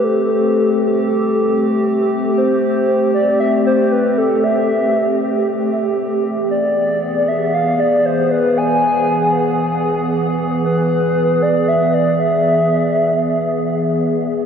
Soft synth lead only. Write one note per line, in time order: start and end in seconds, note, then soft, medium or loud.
0.04 1.07 A4 loud
1.07 1.81 A4 medium
2.37 3.10 C5 loud
3.14 3.38 D5 loud
3.40 3.52 E5 loud
3.66 3.93 C5 loud
3.92 4.19 B4 loud
4.18 4.45 A4 loud
4.44 5.47 E5 loud
6.50 7.30 D5 loud
7.28 7.55 E5 loud
7.54 7.81 F5 medium
7.80 8.07 D5 loud
8.06 8.33 C5 medium
8.31 8.59 B4 loud
8.57 9.61 G#5 loud
10.65 11.44 B4 loud
11.42 11.70 D5 loud
11.68 11.95 E5 loud
11.94 12.19 D5 loud
12.20 13.97 E5 loud